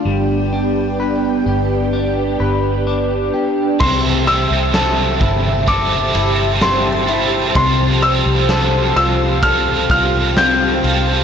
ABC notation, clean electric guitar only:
X:1
M:4/4
L:1/8
Q:1/4=64
K:C
V:1 name="Clean electric guitar"
G, D B G D B D G | C, C A E A E C E | C, C A F A F C F |]